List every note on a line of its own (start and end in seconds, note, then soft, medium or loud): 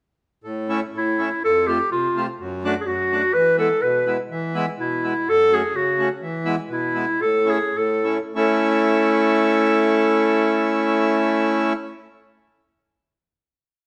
0.44 0.81 A2 medium
0.69 0.80 A3 medium
0.69 0.80 C#4 medium
0.69 0.80 E4 medium
0.93 1.30 A2 medium
0.93 1.41 E4 medium
1.19 1.30 A3 medium
1.19 1.29 C#4 soft
1.19 1.29 E4 soft
1.44 1.79 F2 medium
1.44 1.69 A4 medium
1.68 1.78 A3 medium
1.68 1.78 C4 medium
1.68 1.78 F4 medium
1.68 1.91 G4 medium
1.92 2.27 C3 medium
1.92 2.25 F4 medium
2.16 2.26 A3 medium
2.16 2.27 C4 soft
2.16 2.27 F4 medium
2.40 2.75 F#2 medium
2.65 2.74 A3 medium
2.65 2.74 D4 medium
2.65 2.75 F#4 medium
2.81 2.88 G#4 medium
2.87 3.22 F#2 medium
2.87 3.35 F#4 medium
3.12 3.22 A3 soft
3.12 3.22 D4 soft
3.12 3.22 F#4 medium
3.34 3.70 E3 medium
3.34 3.58 B4 medium
3.57 3.69 G#3 soft
3.57 3.68 B3 medium
3.57 3.69 E4 medium
3.57 3.83 A4 medium
3.81 4.18 B2 medium
3.81 4.19 B4 medium
4.06 4.17 G#3 soft
4.06 4.17 B3 soft
4.06 4.17 E4 soft
4.30 4.67 E3 medium
4.55 4.65 G#3 medium
4.55 4.66 B3 medium
4.55 4.66 E4 medium
4.78 5.14 B2 medium
4.78 5.31 E4 medium
5.03 5.14 G#3 soft
5.03 5.14 B3 soft
5.03 5.14 E4 medium
5.27 5.62 F#2 medium
5.27 5.56 A4 loud
5.52 5.62 A3 medium
5.52 5.62 C#4 medium
5.52 5.62 F#4 medium
5.52 5.77 G#4 medium
5.74 6.09 C#3 medium
5.74 6.11 F#4 medium
5.99 6.09 A3 soft
5.99 6.09 C#4 soft
5.99 6.09 F#4 medium
6.21 6.57 E3 medium
6.45 6.56 G#3 medium
6.45 6.56 B3 medium
6.45 6.56 E4 medium
6.69 7.06 B2 medium
6.69 7.24 E4 medium
6.94 7.05 G#3 soft
6.94 7.05 B3 soft
6.94 7.05 E4 medium
7.19 7.60 A2 soft
7.19 7.52 A4 medium
7.46 7.58 A3 medium
7.46 7.58 C#4 soft
7.46 7.58 E4 medium
7.50 7.79 G#4 medium
7.74 8.20 A2 medium
7.74 8.22 A4 medium
8.04 8.18 A3 soft
8.04 8.18 C#4 soft
8.04 8.18 E4 medium
8.35 11.73 A3 medium
8.35 11.73 C#4 medium
8.35 11.73 E4 medium
8.35 11.74 A4 medium